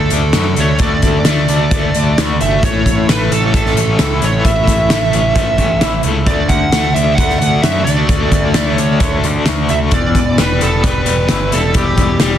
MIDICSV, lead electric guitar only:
0, 0, Header, 1, 2, 480
1, 0, Start_track
1, 0, Key_signature, 2, "major"
1, 0, Tempo, 455927
1, 844, Time_signature, 4, 2, 24, 8
1, 13035, End_track
2, 0, Start_track
2, 0, Title_t, "Lead electric guitar"
2, 0, Program_c, 0, 29
2, 0, Note_on_c, 0, 69, 86
2, 633, Note_off_c, 0, 69, 0
2, 634, Note_on_c, 0, 73, 94
2, 843, Note_off_c, 0, 73, 0
2, 863, Note_on_c, 0, 74, 100
2, 2535, Note_off_c, 0, 74, 0
2, 2539, Note_on_c, 0, 76, 102
2, 2780, Note_off_c, 0, 76, 0
2, 2789, Note_on_c, 0, 73, 99
2, 3256, Note_on_c, 0, 71, 82
2, 3273, Note_off_c, 0, 73, 0
2, 3499, Note_off_c, 0, 71, 0
2, 3504, Note_on_c, 0, 69, 76
2, 3716, Note_off_c, 0, 69, 0
2, 3729, Note_on_c, 0, 69, 83
2, 4407, Note_off_c, 0, 69, 0
2, 4474, Note_on_c, 0, 73, 83
2, 4691, Note_off_c, 0, 73, 0
2, 4695, Note_on_c, 0, 76, 90
2, 6330, Note_off_c, 0, 76, 0
2, 6603, Note_on_c, 0, 74, 97
2, 6825, Note_on_c, 0, 78, 86
2, 6829, Note_off_c, 0, 74, 0
2, 7304, Note_on_c, 0, 76, 81
2, 7332, Note_off_c, 0, 78, 0
2, 7526, Note_on_c, 0, 78, 94
2, 7539, Note_off_c, 0, 76, 0
2, 7768, Note_off_c, 0, 78, 0
2, 7780, Note_on_c, 0, 78, 94
2, 8022, Note_on_c, 0, 76, 79
2, 8042, Note_off_c, 0, 78, 0
2, 8254, Note_off_c, 0, 76, 0
2, 8258, Note_on_c, 0, 74, 79
2, 9174, Note_off_c, 0, 74, 0
2, 9174, Note_on_c, 0, 73, 79
2, 9671, Note_off_c, 0, 73, 0
2, 10215, Note_on_c, 0, 76, 92
2, 10279, Note_off_c, 0, 76, 0
2, 10461, Note_on_c, 0, 74, 107
2, 10901, Note_off_c, 0, 74, 0
2, 10945, Note_on_c, 0, 71, 93
2, 11183, Note_off_c, 0, 71, 0
2, 11188, Note_on_c, 0, 69, 84
2, 11425, Note_off_c, 0, 69, 0
2, 11436, Note_on_c, 0, 71, 97
2, 12099, Note_off_c, 0, 71, 0
2, 12147, Note_on_c, 0, 69, 81
2, 12384, Note_off_c, 0, 69, 0
2, 12391, Note_on_c, 0, 67, 79
2, 13035, Note_off_c, 0, 67, 0
2, 13035, End_track
0, 0, End_of_file